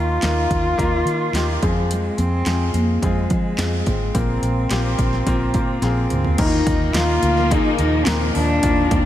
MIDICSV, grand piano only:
0, 0, Header, 1, 2, 480
1, 0, Start_track
1, 0, Tempo, 560852
1, 1629, Time_signature, 4, 2, 24, 8
1, 7749, End_track
2, 0, Start_track
2, 0, Title_t, "Grand piano"
2, 0, Program_c, 0, 0
2, 0, Control_c, 0, 64, 127
2, 0, Note_on_c, 0, 51, 49
2, 0, Note_on_c, 0, 58, 58
2, 0, Note_on_c, 0, 63, 53
2, 0, Note_on_c, 0, 65, 51
2, 0, Note_on_c, 0, 67, 62
2, 0, Note_on_c, 0, 70, 62
2, 109, Note_off_c, 0, 58, 0
2, 109, Note_off_c, 0, 63, 0
2, 111, Note_off_c, 0, 65, 0
2, 113, Note_off_c, 0, 70, 0
2, 192, Note_on_c, 0, 58, 61
2, 194, Note_on_c, 0, 63, 52
2, 197, Note_on_c, 0, 65, 55
2, 198, Note_on_c, 0, 70, 64
2, 396, Note_off_c, 0, 51, 0
2, 590, Note_off_c, 0, 58, 0
2, 591, Note_off_c, 0, 63, 0
2, 592, Note_off_c, 0, 65, 0
2, 593, Note_off_c, 0, 70, 0
2, 664, Note_on_c, 0, 58, 76
2, 667, Note_on_c, 0, 63, 67
2, 670, Note_on_c, 0, 65, 64
2, 673, Note_on_c, 0, 70, 80
2, 1066, Note_off_c, 0, 58, 0
2, 1068, Note_off_c, 0, 63, 0
2, 1069, Note_off_c, 0, 65, 0
2, 1071, Note_off_c, 0, 70, 0
2, 1150, Note_on_c, 0, 58, 66
2, 1155, Note_on_c, 0, 63, 61
2, 1157, Note_on_c, 0, 65, 60
2, 1159, Note_off_c, 0, 67, 0
2, 1159, Note_on_c, 0, 67, 71
2, 1383, Note_off_c, 0, 65, 0
2, 1389, Note_off_c, 0, 58, 0
2, 1390, Note_on_c, 0, 56, 67
2, 1392, Note_off_c, 0, 63, 0
2, 1393, Note_on_c, 0, 60, 61
2, 1394, Note_off_c, 0, 67, 0
2, 1396, Note_on_c, 0, 65, 60
2, 1398, Note_on_c, 0, 68, 75
2, 1400, Control_c, 0, 64, 0
2, 1546, Control_c, 0, 64, 127
2, 1989, Note_off_c, 0, 56, 0
2, 1991, Note_off_c, 0, 60, 0
2, 1992, Note_off_c, 0, 65, 0
2, 1993, Note_off_c, 0, 68, 0
2, 2110, Note_on_c, 0, 56, 57
2, 2112, Note_on_c, 0, 60, 54
2, 2114, Note_on_c, 0, 65, 53
2, 2119, Note_on_c, 0, 68, 69
2, 2509, Note_off_c, 0, 56, 0
2, 2510, Note_off_c, 0, 60, 0
2, 2511, Note_off_c, 0, 65, 0
2, 2514, Note_off_c, 0, 68, 0
2, 2596, Note_on_c, 0, 56, 60
2, 2597, Note_on_c, 0, 60, 53
2, 2601, Note_on_c, 0, 65, 58
2, 2602, Note_on_c, 0, 68, 71
2, 2992, Note_off_c, 0, 56, 0
2, 2993, Note_off_c, 0, 60, 0
2, 2995, Note_off_c, 0, 65, 0
2, 2995, Note_off_c, 0, 68, 0
2, 3068, Note_on_c, 0, 56, 51
2, 3068, Note_on_c, 0, 60, 49
2, 3072, Note_on_c, 0, 65, 49
2, 3076, Note_on_c, 0, 68, 60
2, 3468, Note_off_c, 0, 56, 0
2, 3468, Note_off_c, 0, 60, 0
2, 3470, Note_off_c, 0, 65, 0
2, 3472, Note_off_c, 0, 68, 0
2, 3546, Note_on_c, 0, 58, 59
2, 3548, Note_on_c, 0, 60, 55
2, 3550, Note_on_c, 0, 46, 49
2, 3551, Note_on_c, 0, 65, 51
2, 3553, Note_on_c, 0, 70, 67
2, 3559, Control_c, 0, 64, 0
2, 3695, Control_c, 0, 64, 127
2, 3947, Note_off_c, 0, 58, 0
2, 3948, Note_off_c, 0, 60, 0
2, 3949, Note_off_c, 0, 65, 0
2, 3951, Note_off_c, 0, 70, 0
2, 4028, Note_on_c, 0, 58, 68
2, 4031, Note_on_c, 0, 60, 63
2, 4035, Note_on_c, 0, 65, 67
2, 4035, Note_on_c, 0, 67, 78
2, 4235, Note_off_c, 0, 46, 0
2, 4428, Note_off_c, 0, 58, 0
2, 4430, Note_off_c, 0, 60, 0
2, 4432, Note_off_c, 0, 65, 0
2, 4432, Note_off_c, 0, 67, 0
2, 4506, Note_on_c, 0, 58, 73
2, 4509, Note_on_c, 0, 60, 66
2, 4513, Note_on_c, 0, 65, 67
2, 4514, Note_on_c, 0, 70, 79
2, 4907, Note_off_c, 0, 58, 0
2, 4909, Note_off_c, 0, 60, 0
2, 4910, Note_off_c, 0, 65, 0
2, 4911, Note_off_c, 0, 70, 0
2, 4983, Note_on_c, 0, 58, 64
2, 4988, Note_on_c, 0, 60, 57
2, 4990, Note_on_c, 0, 65, 62
2, 4994, Note_on_c, 0, 68, 71
2, 5386, Note_off_c, 0, 58, 0
2, 5388, Note_off_c, 0, 60, 0
2, 5389, Note_off_c, 0, 65, 0
2, 5391, Note_off_c, 0, 68, 0
2, 5461, Note_on_c, 0, 58, 61
2, 5466, Note_on_c, 0, 63, 60
2, 5467, Note_on_c, 0, 51, 56
2, 5468, Note_on_c, 0, 70, 73
2, 5469, Note_on_c, 0, 64, 49
2, 5478, Control_c, 0, 64, 0
2, 5525, Note_off_c, 0, 64, 0
2, 5525, Note_on_c, 0, 65, 62
2, 5635, Control_c, 0, 64, 127
2, 5865, Note_off_c, 0, 58, 0
2, 5867, Note_off_c, 0, 63, 0
2, 5868, Note_off_c, 0, 70, 0
2, 5897, Note_off_c, 0, 65, 0
2, 5938, Note_on_c, 0, 58, 64
2, 5943, Note_on_c, 0, 63, 62
2, 5947, Note_on_c, 0, 65, 60
2, 5947, Note_on_c, 0, 70, 75
2, 6153, Note_off_c, 0, 51, 0
2, 6343, Note_off_c, 0, 58, 0
2, 6346, Note_off_c, 0, 63, 0
2, 6348, Note_off_c, 0, 65, 0
2, 6348, Note_off_c, 0, 70, 0
2, 6429, Note_on_c, 0, 58, 69
2, 6432, Note_on_c, 0, 65, 63
2, 6433, Note_on_c, 0, 63, 63
2, 6434, Note_on_c, 0, 68, 76
2, 6829, Note_off_c, 0, 58, 0
2, 6830, Note_off_c, 0, 63, 0
2, 6830, Note_off_c, 0, 65, 0
2, 6831, Note_off_c, 0, 68, 0
2, 6904, Note_on_c, 0, 63, 59
2, 6905, Note_on_c, 0, 58, 64
2, 6909, Note_on_c, 0, 65, 57
2, 6912, Note_on_c, 0, 70, 68
2, 7306, Note_off_c, 0, 63, 0
2, 7307, Note_off_c, 0, 58, 0
2, 7308, Note_off_c, 0, 65, 0
2, 7310, Note_off_c, 0, 70, 0
2, 7386, Note_on_c, 0, 58, 63
2, 7390, Note_on_c, 0, 51, 62
2, 7391, Note_on_c, 0, 65, 63
2, 7392, Note_on_c, 0, 70, 70
2, 7749, Note_off_c, 0, 51, 0
2, 7749, Note_off_c, 0, 58, 0
2, 7749, Note_off_c, 0, 65, 0
2, 7749, Note_off_c, 0, 70, 0
2, 7749, End_track
0, 0, End_of_file